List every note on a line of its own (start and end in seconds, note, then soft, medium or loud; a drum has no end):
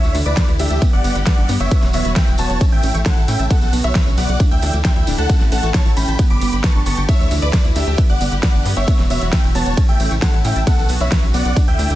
0.00 0.12 D2 medium
0.00 1.69 D3 medium
0.00 0.81 E3 medium
0.00 0.81 A3 medium
0.00 0.81 E4 medium
0.00 0.16 C#5 medium
0.00 0.16 E5 loud
0.00 closed hi-hat soft
0.00 tambourine soft
0.15 0.23 D2 loud
0.15 0.25 D4 medium
0.15 open hi-hat loud
0.15 tambourine medium
0.25 0.35 D2 loud
0.25 0.49 B4 medium
0.25 0.49 D5 loud
0.25 0.30 D6 medium
0.25 closed hi-hat medium
0.25 tambourine soft
0.37 0.45 D5 loud
0.37 kick loud
0.37 snare loud
0.37 closed hi-hat medium
0.37 ride medium
0.37 tambourine soft
0.48 0.57 D2 medium
0.48 0.56 E4 medium
0.48 closed hi-hat soft
0.48 tambourine soft
0.59 0.68 D2 loud
0.59 0.70 D4 loud
0.59 0.83 G4 medium
0.59 0.83 E5 loud
0.59 0.83 E5 medium
0.59 open hi-hat loud
0.59 tambourine medium
0.70 0.79 D2 medium
0.70 0.75 A5 medium
0.70 closed hi-hat medium
0.70 tambourine soft
0.82 1.71 G3 medium
0.82 0.89 B3 loud
0.82 2.59 B3 medium
0.82 1.71 G4 medium
0.82 kick loud
0.82 closed hi-hat medium
0.82 ride medium
0.82 tambourine medium
0.93 1.02 G1 medium
0.93 1.17 D5 medium
0.93 1.17 F#5 medium
0.93 closed hi-hat soft
1.04 1.13 G1 loud
1.04 1.15 B3 medium
1.04 open hi-hat loud
1.04 tambourine medium
1.15 1.24 G1 medium
1.15 1.20 B5 medium
1.15 closed hi-hat medium
1.15 tambourine soft
1.26 1.34 B4 loud
1.26 1.50 D5 medium
1.26 1.50 F#5 loud
1.26 kick loud
1.26 snare loud
1.26 closed hi-hat medium
1.26 ride medium
1.26 tambourine medium
1.38 1.47 G1 medium
1.38 1.45 D4 medium
1.38 closed hi-hat soft
1.49 1.58 G2 loud
1.49 1.60 B3 loud
1.49 open hi-hat loud
1.49 tambourine loud
1.60 1.69 G1 medium
1.60 1.84 C#5 medium
1.60 1.84 E5 loud
1.60 1.65 G5 medium
1.60 closed hi-hat medium
1.60 tambourine soft
1.71 2.60 E3 medium
1.71 2.60 F#3 medium
1.71 1.79 B3 loud
1.71 2.60 F#4 medium
1.71 kick loud
1.71 closed hi-hat medium
1.71 ride medium
1.71 tambourine medium
1.82 1.91 E1 medium
1.82 snare soft
1.82 closed hi-hat soft
1.82 tambourine soft
1.93 2.03 E1 loud
1.93 2.05 B3 medium
1.93 2.09 C#5 medium
1.93 2.09 E5 medium
1.93 2.10 E5 medium
1.93 open hi-hat loud
1.93 tambourine loud
2.05 2.14 E1 medium
2.05 2.10 B5 medium
2.05 closed hi-hat medium
2.05 tambourine soft
2.16 2.24 B4 loud
2.16 2.32 E5 medium
2.16 2.32 G5 medium
2.16 2.32 G5 loud
2.16 kick loud
2.16 snare loud
2.16 closed hi-hat medium
2.16 ride medium
2.16 tambourine medium
2.27 2.36 E1 medium
2.27 2.35 E4 medium
2.27 closed hi-hat soft
2.27 tambourine soft
2.38 2.47 E1 loud
2.38 2.49 B3 loud
2.38 2.62 C#5 medium
2.38 2.62 A5 loud
2.38 open hi-hat loud
2.38 tambourine loud
2.50 2.58 E1 medium
2.50 2.54 F#5 medium
2.50 closed hi-hat medium
2.50 tambourine soft
2.61 3.49 C#3 medium
2.61 3.50 E3 medium
2.61 3.50 A3 medium
2.61 2.69 C#4 loud
2.61 3.50 E4 medium
2.61 kick loud
2.61 closed hi-hat medium
2.61 ride medium
2.61 tambourine medium
2.72 2.81 A1 medium
2.72 2.96 E5 medium
2.72 2.96 G5 loud
2.72 2.96 G5 medium
2.72 closed hi-hat soft
2.83 2.92 A1 loud
2.83 2.94 C#4 medium
2.83 open hi-hat loud
2.83 tambourine medium
2.94 3.03 A1 medium
2.94 2.99 C#6 medium
2.94 closed hi-hat medium
2.94 tambourine soft
3.05 3.21 A4 medium
3.05 3.13 C#5 loud
3.05 3.21 F#5 medium
3.05 kick loud
3.05 snare loud
3.05 closed hi-hat medium
3.05 ride medium
3.05 tambourine medium
3.17 3.26 A1 medium
3.17 3.25 E4 medium
3.17 closed hi-hat soft
3.28 3.37 A2 loud
3.28 3.39 C#4 loud
3.28 3.44 E5 medium
3.28 3.44 G5 medium
3.28 open hi-hat loud
3.28 tambourine medium
3.39 3.48 A1 medium
3.39 3.44 A5 medium
3.39 closed hi-hat medium
3.39 tambourine soft
3.50 4.39 C#3 medium
3.50 4.39 F#3 medium
3.50 3.58 B3 loud
3.50 4.39 B3 medium
3.50 4.39 F#4 medium
3.50 3.74 A4 medium
3.50 3.74 F#5 loud
3.50 kick loud
3.50 closed hi-hat medium
3.50 ride medium
3.50 tambourine medium
3.62 3.70 B1 medium
3.62 closed hi-hat soft
3.62 tambourine soft
3.73 3.82 B1 loud
3.73 3.84 B3 medium
3.73 open hi-hat loud
3.73 tambourine loud
3.84 3.93 B1 loud
3.84 4.08 C#5 medium
3.84 4.08 E5 loud
3.84 3.89 B5 medium
3.84 closed hi-hat medium
3.84 tambourine soft
3.95 4.03 B4 loud
3.95 kick loud
3.95 snare loud
3.95 closed hi-hat medium
3.95 ride medium
3.95 tambourine medium
4.06 4.15 B1 medium
4.06 4.14 C#4 medium
4.06 closed hi-hat soft
4.06 tambourine soft
4.17 4.26 B1 loud
4.17 4.28 B3 loud
4.17 4.41 D5 medium
4.17 4.41 F#5 loud
4.17 open hi-hat loud
4.17 tambourine loud
4.28 4.38 B1 medium
4.28 4.33 F#5 medium
4.28 closed hi-hat soft
4.28 tambourine soft
4.40 5.29 D3 medium
4.40 6.17 E3 medium
4.40 6.17 A3 medium
4.40 4.48 D4 loud
4.40 6.17 E4 medium
4.40 kick loud
4.40 closed hi-hat medium
4.40 ride medium
4.40 tambourine medium
4.51 4.60 D2 medium
4.51 4.75 E5 medium
4.51 4.75 G5 medium
4.51 4.75 G5 loud
4.51 closed hi-hat soft
4.62 4.71 D2 loud
4.62 4.73 D4 medium
4.62 open hi-hat loud
4.62 tambourine medium
4.73 4.82 D2 medium
4.73 4.78 D6 medium
4.73 closed hi-hat medium
4.73 tambourine soft
4.85 4.92 D5 loud
4.85 5.08 E5 medium
4.85 5.08 G5 loud
4.85 kick loud
4.85 snare loud
4.85 closed hi-hat medium
4.85 ride medium
4.85 tambourine medium
4.96 5.05 D2 medium
4.96 5.04 E4 medium
4.96 closed hi-hat soft
5.07 5.16 D1 loud
5.07 5.18 D4 loud
5.07 open hi-hat loud
5.07 tambourine loud
5.18 5.27 D2 loud
5.18 5.42 A4 medium
5.18 5.42 F#5 loud
5.18 5.23 A5 medium
5.18 closed hi-hat medium
5.18 tambourine soft
5.29 6.18 C#3 medium
5.29 5.37 C#4 loud
5.29 kick loud
5.29 closed hi-hat medium
5.29 ride medium
5.29 tambourine medium
5.41 5.50 A1 medium
5.41 snare soft
5.41 closed hi-hat soft
5.41 tambourine soft
5.52 5.61 A1 loud
5.52 5.63 C#4 medium
5.52 5.68 A4 medium
5.52 5.68 F#5 medium
5.52 open hi-hat loud
5.52 tambourine loud
5.63 5.72 A1 loud
5.63 5.68 C#6 medium
5.63 closed hi-hat medium
5.63 tambourine soft
5.74 5.82 C#5 loud
5.74 5.90 C#5 medium
5.74 5.90 A5 medium
5.74 kick loud
5.74 snare loud
5.74 closed hi-hat medium
5.74 ride medium
5.74 tambourine medium
5.86 5.94 A1 medium
5.86 5.93 E4 medium
5.86 closed hi-hat soft
5.86 tambourine soft
5.97 6.06 A1 loud
5.97 6.07 C#4 loud
5.97 6.20 G5 medium
5.97 6.20 B5 medium
5.97 6.20 B5 loud
5.97 open hi-hat loud
5.97 tambourine medium
6.08 6.17 A1 medium
6.08 6.12 A5 medium
6.08 closed hi-hat medium
6.08 tambourine soft
6.18 7.97 D3 medium
6.18 7.08 G3 medium
6.18 6.27 B3 loud
6.18 7.08 B3 medium
6.18 7.08 G4 medium
6.18 kick loud
6.18 closed hi-hat medium
6.18 ride medium
6.18 tambourine medium
6.30 6.39 G1 medium
6.30 6.54 B5 medium
6.30 6.54 D6 medium
6.30 closed hi-hat soft
6.41 6.50 G1 loud
6.41 6.52 B3 medium
6.41 open hi-hat loud
6.41 tambourine medium
6.52 6.62 G1 medium
6.52 6.57 B5 medium
6.52 closed hi-hat medium
6.52 tambourine soft
6.64 6.72 B4 loud
6.64 6.80 A5 medium
6.64 6.80 C#6 medium
6.64 kick loud
6.64 snare loud
6.64 closed hi-hat medium
6.64 ride medium
6.64 tambourine medium
6.75 6.84 G1 medium
6.75 6.83 D4 medium
6.75 closed hi-hat soft
6.86 6.95 G1 loud
6.86 6.97 B3 loud
6.86 7.02 A5 medium
6.86 7.02 C#6 medium
6.86 open hi-hat loud
6.86 tambourine medium
6.97 7.06 G1 medium
6.97 7.02 G5 medium
6.97 closed hi-hat medium
6.97 tambourine soft
7.09 7.97 E3 medium
7.09 7.97 A3 medium
7.09 7.16 D4 loud
7.09 7.97 E4 medium
7.09 7.32 C#5 medium
7.09 7.32 E5 loud
7.09 kick loud
7.09 closed hi-hat medium
7.09 ride medium
7.09 tambourine medium
7.20 7.29 D2 medium
7.20 closed hi-hat soft
7.20 tambourine soft
7.31 7.40 D2 loud
7.31 7.42 D4 medium
7.31 open hi-hat loud
7.31 tambourine loud
7.42 7.51 D2 medium
7.42 7.66 B4 medium
7.42 7.66 D5 loud
7.42 7.47 D6 medium
7.42 closed hi-hat medium
7.42 tambourine soft
7.53 7.61 D5 loud
7.53 kick loud
7.53 snare loud
7.53 closed hi-hat medium
7.53 ride medium
7.53 tambourine medium
7.65 7.74 D2 medium
7.65 7.72 E4 medium
7.65 closed hi-hat soft
7.65 tambourine soft
7.76 7.85 D2 loud
7.76 7.87 D4 loud
7.76 7.99 G4 medium
7.76 7.99 E5 medium
7.76 7.99 E5 loud
7.76 open hi-hat loud
7.76 tambourine medium
7.87 7.96 D2 medium
7.87 7.92 A5 medium
7.87 closed hi-hat medium
7.87 tambourine soft
7.98 8.87 D3 medium
7.98 8.87 G3 medium
7.98 9.76 B3 medium
7.98 8.06 B3 loud
7.98 8.87 G4 medium
7.98 kick loud
7.98 closed hi-hat medium
7.98 ride medium
7.98 tambourine medium
8.09 8.18 G1 medium
8.09 8.33 D5 medium
8.09 8.33 F#5 medium
8.09 8.33 F#5 loud
8.09 closed hi-hat soft
8.21 8.30 G1 loud
8.21 8.31 B3 medium
8.21 open hi-hat loud
8.21 tambourine loud
8.32 8.41 G1 medium
8.32 8.36 B5 medium
8.32 closed hi-hat medium
8.32 tambourine soft
8.43 8.51 B4 loud
8.43 8.67 D5 medium
8.43 8.67 F#5 loud
8.43 kick loud
8.43 snare loud
8.43 closed hi-hat soft
8.43 ride medium
8.43 tambourine medium
8.54 8.63 G1 medium
8.54 8.62 D4 medium
8.54 closed hi-hat soft
8.65 8.74 G2 loud
8.65 8.76 B3 loud
8.65 open hi-hat loud
8.65 tambourine medium
8.76 8.85 G1 medium
8.76 9.00 C#5 medium
8.76 9.00 E5 loud
8.76 8.81 G5 medium
8.76 closed hi-hat medium
8.76 tambourine soft
8.88 10.65 E3 medium
8.88 9.77 F#3 medium
8.88 8.95 B3 loud
8.88 9.77 F#4 medium
8.88 kick loud
8.88 closed hi-hat medium
8.88 ride medium
8.88 tambourine soft
8.99 9.08 E1 medium
8.99 snare soft
8.99 closed hi-hat soft
8.99 tambourine soft
9.10 9.19 E1 loud
9.10 9.21 B3 medium
9.10 9.26 C#5 medium
9.10 9.26 E5 medium
9.10 open hi-hat loud
9.10 tambourine medium
9.21 9.30 E1 loud
9.21 9.26 B5 medium
9.21 closed hi-hat medium
9.21 tambourine soft
9.32 9.40 B4 loud
9.32 9.48 E5 medium
9.32 9.48 G5 medium
9.32 9.48 G5 loud
9.32 kick loud
9.32 snare loud
9.32 closed hi-hat medium
9.32 ride medium
9.32 tambourine medium
9.44 9.53 E1 medium
9.44 9.51 E4 medium
9.44 closed hi-hat soft
9.44 tambourine soft
9.55 9.64 E1 loud
9.55 9.66 B3 loud
9.55 9.79 C#5 medium
9.55 9.79 A5 loud
9.55 open hi-hat loud
9.55 tambourine medium
9.66 9.75 E1 medium
9.66 9.71 F#5 medium
9.66 closed hi-hat medium
9.66 tambourine soft
9.77 10.66 C#3 medium
9.77 10.66 A3 medium
9.77 9.85 C#4 loud
9.77 10.66 E4 medium
9.77 kick loud
9.77 closed hi-hat medium
9.77 ride medium
9.77 tambourine medium
9.89 9.97 A1 medium
9.89 10.12 E5 medium
9.89 10.12 G5 medium
9.89 10.12 G5 loud
9.89 closed hi-hat soft
10.00 10.09 A1 loud
10.00 10.10 C#4 medium
10.00 open hi-hat loud
10.00 tambourine medium
10.11 10.20 A1 medium
10.11 10.16 C#6 medium
10.11 closed hi-hat medium
10.11 tambourine soft
10.22 10.38 A4 medium
10.22 10.30 C#5 loud
10.22 10.38 F#5 medium
10.22 kick loud
10.22 snare loud
10.22 closed hi-hat medium
10.22 ride medium
10.22 tambourine medium
10.33 10.42 A1 medium
10.33 10.41 E4 medium
10.33 closed hi-hat soft
10.44 10.53 A2 loud
10.44 10.55 C#4 loud
10.44 10.60 E5 medium
10.44 10.60 G5 medium
10.44 open hi-hat loud
10.44 tambourine medium
10.56 10.64 A1 medium
10.56 10.60 A5 medium
10.56 closed hi-hat medium
10.56 tambourine soft
10.67 11.56 C#3 medium
10.67 11.56 F#3 medium
10.67 11.56 B3 medium
10.67 10.75 B3 loud
10.67 11.56 F#4 medium
10.67 10.91 A4 medium
10.67 10.90 F#5 loud
10.67 10.91 F#5 loud
10.67 kick loud
10.67 closed hi-hat medium
10.67 ride medium
10.67 tambourine medium
10.78 10.87 B1 medium
10.78 closed hi-hat soft
10.78 tambourine soft
10.89 10.98 B1 loud
10.89 11.00 B3 medium
10.89 open hi-hat loud
10.89 tambourine medium
11.00 11.09 B1 medium
11.00 11.24 C#5 medium
11.00 11.24 E5 loud
11.00 11.05 B5 medium
11.00 closed hi-hat medium
11.00 tambourine soft
11.12 11.19 B4 loud
11.12 kick loud
11.12 snare loud
11.12 closed hi-hat medium
11.12 ride medium
11.12 tambourine medium
11.23 11.32 B1 medium
11.23 11.31 C#4 medium
11.23 closed hi-hat soft
11.23 tambourine soft
11.34 11.43 B1 loud
11.34 11.45 B3 loud
11.34 11.58 D5 medium
11.34 11.58 F#5 loud
11.34 open hi-hat loud
11.34 tambourine medium
11.45 11.54 B1 medium
11.45 11.50 F#5 medium
11.45 closed hi-hat medium
11.45 tambourine soft
11.56 11.95 D3 medium
11.56 11.95 E3 medium
11.56 11.95 A3 medium
11.56 11.64 D4 loud
11.56 11.95 E4 medium
11.56 kick loud
11.56 closed hi-hat medium
11.56 ride medium
11.56 tambourine soft
11.68 11.76 D2 medium
11.68 11.91 E5 medium
11.68 11.91 G5 medium
11.68 11.91 G5 loud
11.68 closed hi-hat soft
11.79 11.88 D2 loud
11.79 11.90 D4 medium
11.79 open hi-hat loud
11.79 tambourine medium
11.90 11.95 D2 medium
11.90 11.95 D6 medium
11.90 closed hi-hat medium
11.90 tambourine soft